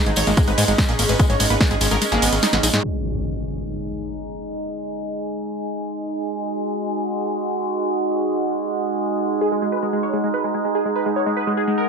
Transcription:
Already playing: G#3 C#4 D#4 G#4 D#5 A#5
0.06 G#1 G#3, closed hi-hat, tambourine
0.16 G#1 G#3 C#5, open hi-hat, ride, tambourine
0.27 G#1 G#3 A#3, closed hi-hat, tambourine
0.37 G#3 A#3, kick, closed hi-hat, ride, tambourine
0.48 G#1 G#3 B4, closed hi-hat, tambourine
0.58 G#2 G#3, open hi-hat, ride, tambourine
0.68 G#1 G#3, closed hi-hat, tambourine
0.78 G#3, kick, snare, closed hi-hat, ride, tambourine
0.89 A#1 A#3 G#4, closed hi-hat, tambourine
0.99 G#1 G#3 A#3, open hi-hat, ride, tambourine
1.08 G#1 G#3 B4, closed hi-hat, tambourine
1.19 G#3, kick, closed hi-hat, ride, tambourine
1.30 G#1 G#3 C#5, closed hi-hat, tambourine
1.40 G#1 G#3, open hi-hat, ride, tambourine
1.50 G#1 A#3 B4, closed hi-hat, tambourine
1.61 G#3 A#3, kick, snare, closed hi-hat, ride, tambourine
1.71 G#1 G#3 G#4, closed hi-hat, tambourine
1.81 G#1 G#3, open hi-hat, ride, tambourine
1.91 G#1 G#3 A#4, closed hi-hat, tambourine
2.02 G#3, closed hi-hat, ride, tambourine
2.12 G#1 A#3 G#4, snare, closed hi-hat, tambourine
2.22 G#1 G#3 B3, open hi-hat, ride, tambourine
2.32 G#1 G#3 A#3, closed hi-hat, tambourine
2.43 G#3 D#4, snare, closed hi-hat, ride, tambourine
2.53 G#1 G#3 B3, snare, closed hi-hat
2.63 A#1 G#3 D#4, open hi-hat, ride, tambourine
2.73 G#2 G#3, snare, closed hi-hat, tambourine
2.84 G#3 D#4, impact
3.00 G#4 G#5
3.76 D#5
6.13 F#4
9.41 D#4 G#4
9.52 G#3
9.58 F#5
9.62 G#3
9.72 B4
9.83 G#3
9.93 G#3
10.03 C#5
10.13 G#3
10.24 G#3
10.34 B4
10.44 G#3
10.54 G#3
10.65 G#3
10.75 G#4
10.85 G#3
10.96 B4
11.06 G#3
11.16 C#5
11.26 G#3
11.37 B4
11.47 G#3
11.57 G#4
11.67 G#3
11.78 A#4

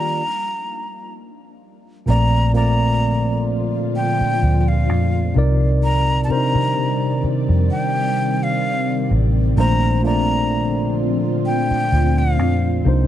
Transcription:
Already playing: D#3 G3 A#3 D4 D#4 F4 G4 D5 A#5
2.06 A#1 A#2 D3 F3 A3 A#3 C4 F4 A#5
2.10 D5
2.53 A#2 A3 A#3 C4 A#5
2.57 D5
3.96 G5
4.21 muted fingered electric bass stroke
4.43 D2
4.61 G5
4.68 F5
4.89 F2
5.34 C2 C3 D#3 G3 C4 D#4 A#4 D5
5.38 D5
5.83 A#5
6.24 C3 A5
6.29 C4 D4 A#4 C5 A#5, muted fingered electric bass stroke
6.36 D#4
6.55 C3
7.24 muted fingered electric bass stroke
7.49 F2
7.71 G5
8.43 F5
9.11 A1
9.56 A#1 A#2 D3 F3 A3 A#3 D4 F4 A#5
9.60 C5
10.03 A#2 A3 A#3 D4 A#5
10.07 D5
11.46 G5
11.71 muted fingered electric bass stroke
11.92 D2
12.18 F5
12.39 F2
12.84 C2 C3 D#3 G3 A#3 D4 D#4
12.88 C5

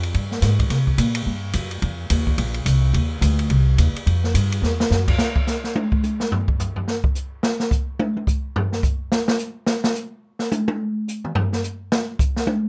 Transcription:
Already playing: F2
0.03 ride
0.14 G2, kick, ride
0.31 snare
0.42 G#2, snare, hi-hat pedal, ride
0.59 kick, ride
0.70 C3, kick, snare, ride
0.87 kick
0.98 A#2, kick, hi-hat pedal, ride
1.15 ride
1.26 G2, kick
1.53 F#2, kick, hi-hat pedal, ride
1.71 ride
1.82 F2, kick, ride
2.10 D#2, kick, hi-hat pedal, ride
2.27 kick
2.38 A#1, kick, ride
2.54 ride
2.66 C2, kick, hi-hat pedal, ride
2.93 D#2, kick, ride
3.21 D2, kick, hi-hat pedal, ride
3.39 ride
3.50 C2, kick, ride
3.78 D#2, kick, hi-hat pedal, ride
3.94 muted upright bass stroke, ride
4.06 F2, kick, ride
4.24 snare
4.34 G2, kick, hi-hat pedal, ride
4.52 ride
4.62 E2, snare
4.80 snare
4.90 F#2, snare, hi-hat pedal
5.08 kick, crash
5.19 snare
5.36 kick
5.47 snare, hi-hat pedal
5.64 snare
5.75 high tom
5.92 kick
6.03 hi-hat pedal, high tom
6.20 snare
6.32 floor tom
6.48 kick
6.59 floor tom, hi-hat pedal
6.76 floor tom
6.88 snare
7.04 kick
7.15 hi-hat pedal
7.43 snare
7.60 snare
7.71 kick, hi-hat pedal
7.99 high tom
8.17 high tom
8.27 kick, hi-hat pedal
8.56 floor tom
8.72 snare
8.83 kick, hi-hat pedal
9.12 snare
9.28 snare
9.38 hi-hat pedal
9.67 snare
9.84 snare
9.95 hi-hat pedal
10.39 snare
10.51 hi-hat pedal, high tom
10.68 high tom
11.08 hi-hat pedal
11.24 mid tom
11.35 floor tom
11.53 snare
11.64 hi-hat pedal
11.92 snare
12.19 kick, hi-hat pedal
12.36 snare
12.47 high tom

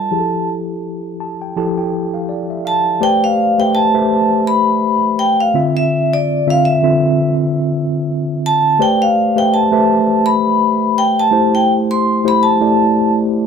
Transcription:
Already playing: G3 F4 A4 D5 A5
0.11 F3 E4 G4 G#4
0.19 A4
1.20 A5
1.42 G5
1.56 F3 E4 G4 A4 A5
1.78 G5
2.14 F5
2.29 D5
2.50 E5
2.65 F5 A5
3.01 A3 G4 B4 C5 D5 G5
3.24 F5
3.58 A3 G4 B4 C5 E5 G5
3.75 A5
3.94 A3 G4 B4 C5 E5
4.47 B5
5.19 G5
5.40 F5
5.54 D3 C4 F4 E5
5.77 E5
6.13 D5
6.47 D3 C4 F4 E5 F5
6.65 E5
6.83 D3 C4 F4 E5
8.46 A5
8.79 A3 G4 B4 C5 D5 G5
9.02 F5
9.36 A3 G4 B4 C5 E5 G5
9.54 A5
9.72 A3 G4 B4 C5 E5
10.26 B5
10.98 G5
11.19 A5
11.31 A3 E4 G4 C5
11.55 G5
11.91 C6
12.24 A3 E4 G4 C5 B5
12.43 A5
12.61 A3 E4 G4 D5

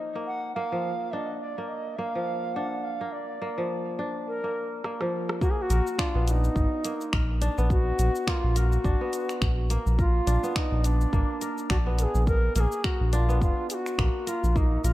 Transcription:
Already playing: F3 A#3 D#4
0.15 A#3
0.27 F#5
0.55 A#3 F5
0.72 F3
1.12 D4 D#5
1.40 D5
1.58 A#3
1.69 D#5
1.97 A#3 F5
2.15 F3
2.54 D4 F#5
2.84 F5
3.01 A#3
3.12 D5
3.42 A#3
3.58 F3
3.99 D4
4.27 A#4
4.44 A#3
4.84 A#3, cross-stick
5.01 F3, cross-stick
5.29 cross-stick
5.41 A#3 F#4, kick, shaker
5.50 G#4
5.58 G#4
5.62 F#4
5.70 A#1 A#4, closed hi-hat, shaker
5.87 shaker
5.99 D4 F4, finger snap, kick, shaker
6.15 A#1 B3
6.27 D#4 F4, closed hi-hat, shaker
6.44 shaker
6.56 G#1, kick, shaker
6.85 A#3, closed hi-hat, shaker
7.01 shaker
7.13 A#1 A#4, finger snap, kick, shaker
7.42 D4, closed hi-hat, shaker
7.58 A#1 B3, shaker
7.70 F#4, kick, shaker
7.99 A#1, closed hi-hat, shaker
8.16 shaker
8.27 A#3 F4, finger snap, kick, shaker
8.44 A#1
8.56 F#4 A#4, closed hi-hat, shaker
8.72 shaker
8.84 G#1 D4, kick, shaker
9.01 B3
9.13 closed hi-hat, shaker
9.29 finger snap, shaker
9.41 A#1, finger snap, kick, shaker
9.70 A#3, closed hi-hat, shaker
9.86 A#1, shaker
9.99 F4 A#4, kick, shaker
10.27 A#1 D4, closed hi-hat, shaker
10.43 B3, shaker
10.56 D#4, finger snap, kick, shaker
10.72 A#1
10.84 D4, closed hi-hat, shaker
11.01 shaker
11.13 G#1 A#3, kick, shaker
11.41 A#4, closed hi-hat, shaker
11.58 shaker
11.70 A#1 D4 F#4, finger snap, kick, shaker
11.86 B3
11.99 A#4, closed hi-hat, shaker
12.03 G#4
12.15 A#1, shaker
12.27 A#4, kick, shaker
12.56 A#1 A#3 A#4, closed hi-hat, shaker
12.60 G#4
12.72 shaker
12.84 F#4 A#4, finger snap, kick, shaker
13.01 A#1
13.13 D4 F4, closed hi-hat, shaker
13.29 B3, shaker
13.41 F1 F4, kick, shaker
13.70 G#4, closed hi-hat, shaker
13.74 F#4
13.86 finger snap, shaker
13.98 A#1 A#3, finger snap, kick, shaker
14.27 F4 A#4, closed hi-hat, shaker
14.44 A#1, shaker
14.56 A#3 D#4, kick, shaker
14.84 A#1 F4 A#4, closed hi-hat, shaker

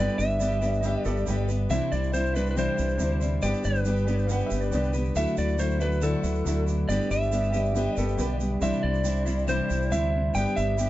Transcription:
Already playing: G2 D3 D5
0.00 G3 B3 D4 G4 B4
0.18 G1 G3 B3 D4 G4 E5, shaker
0.29 shaker
0.40 G3 B3 D4 G4 B4, shaker
0.61 G2 D3 G3 B3 D4 G4 B4, shaker
0.73 shaker
0.81 G3 B3 D#5, shaker
0.85 D4 G4 B4 E5
1.03 G1 B3 D4 G4 A4 D5, shaker
1.08 G3
1.16 shaker
1.27 G1 G2 D3 G3 B3 D4 G4 B4, shaker
1.48 B3 D4 G4 B4, shaker
1.52 G3
1.69 C2 C3 E3 G3 C4 D4 C5 E5, shaker
1.74 E4
1.92 C2 C4 D4 E4 D5, shaker
2.03 shaker
2.13 G3 C4 D4 E4 C5, shaker
2.25 shaker
2.33 C3 G3 C4 D4 E4 B4 C5, shaker
2.46 shaker
2.51 G3 B4
2.56 C3 E3 C4 D4 E4 C5, shaker
2.76 C2 C4 D4 E4, shaker
2.89 shaker
2.97 D2 C3 G3 C4 D4 E4, shaker
3.02 C5
3.20 G3 C4 D4 E4 C5, shaker
3.42 G1 G2 D3 G3 B3 D4 G4 B4 D5, shaker
3.54 shaker
3.63 G1 G3 B3 D4 G4 B4, shaker
3.75 shaker
3.84 G3 B3 D4 G4 B4, shaker
3.96 shaker
4.07 G2 D3 G3 B3 D4 G4 B4, shaker
4.18 shaker
4.26 G3 B3 F5, shaker
4.31 D4 G4 B4 F#5
4.40 shaker
4.46 G4 E5
4.50 G1 G3 B3 D4, shaker
4.61 D5
4.70 C2 G2 D3 G3 B3 C#5, shaker
4.74 D4 G4 B4 D5
4.83 shaker
4.93 G3 B3 D4 G4 B4, shaker
5.05 shaker
5.15 D2 D3 F#3 A3 D4 E4 F#4 A4 E5, shaker
5.37 D2 A3 D4 E4 D5, shaker
5.48 shaker
5.58 F#3 A3 D4 E4 F#4 A4 C5, shaker
5.79 D3 F#3 A3 D4 E4 F#4 A4 B4, shaker
5.84 E4
5.92 shaker
6.01 D3 F#3 A3 D4 E4 F#4 A4, shaker
6.23 D2 A3 D4 E4, shaker
6.35 shaker
6.45 D2 D3 F#3 A3 D4 F#4 A4, shaker
6.49 E4
6.66 A3 D4 E4, shaker
6.88 G1 G2 D3 G3 B3 D4 G4 D5, shaker
6.92 B4
7.10 G1 G3 B3 D4 G4 E5, shaker
7.31 G3 B3 D4 G4 B4, shaker
7.53 G2 D3 G3 B3 D4 G4 B4, shaker
7.65 shaker
7.72 G3 B3 D4 F#4, shaker
7.76 G4 B4
7.96 G1 G3 B3 D4 G4 A4 D5, shaker
8.16 B1 G2 D3 G3 B3 D4 G4 B4, shaker
8.21 B4
8.38 G3 B3 D4 G4, shaker
8.59 C2 C3 E3 G3 C4 D4 E4 E5, shaker
8.63 C5
8.82 C2 C4 D4 E4 D5
8.94 shaker
9.04 G3 C4 D4 E4 C5, shaker
9.16 shaker
9.25 C3 G3 C4 D4 E4 C5, shaker
9.47 C3 E3 G3 C4 D4 E4 C5, shaker
9.69 C2 C4 D4 E4, shaker
9.81 shaker
9.90 D2 C3 G3 C4 D4 E4 C5 E5, shaker
10.13 C4 D4 E4
10.34 G1 G2 D3 G3 B3 D4 G4 B4 G5, shaker
10.56 G1 G3 B3 D4 G4 E5, shaker
10.77 G3 B3 D4 B4, shaker
10.81 G4

